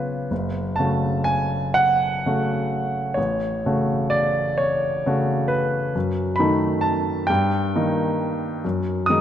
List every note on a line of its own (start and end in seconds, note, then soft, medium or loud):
0.00 0.27 C#3 soft
0.00 0.27 B3 soft
0.00 0.28 F4 soft
0.00 0.29 B4 soft
0.00 0.34 C#5 soft
0.00 0.33 D5 medium
0.31 0.78 F#1 soft
0.76 2.22 C#3 soft
0.76 2.22 A3 soft
0.76 2.22 F#4 soft
0.76 1.26 A5 medium
1.24 1.76 G#5 medium
1.74 3.16 F#5 medium
2.26 3.14 C#3 soft
2.26 3.14 A3 soft
2.26 3.14 F#4 soft
3.14 3.63 A1 soft
3.14 4.11 C#5 medium
3.66 5.03 C#3 soft
3.66 5.03 A3 soft
3.66 5.03 F#4 soft
4.10 4.58 D5 medium
4.58 5.50 C#5 medium
5.06 5.91 C#3 soft
5.06 5.92 A3 soft
5.06 5.92 F#4 soft
5.48 5.94 B4 medium
5.95 6.38 F#2 soft
6.36 7.26 D#3 soft
6.36 6.82 B5 medium
6.40 7.26 A3 soft
6.40 7.26 D#4 soft
6.81 7.28 A5 medium
7.27 7.73 G2 medium
7.27 8.63 G5 medium
7.76 8.61 D#3 soft
7.76 8.61 A#3 soft
7.76 8.61 D#4 soft
8.65 9.08 F#2 soft
9.06 9.21 D#3 soft
9.06 9.21 G#3 soft
9.06 9.21 D#6 medium
9.10 9.21 D#4 soft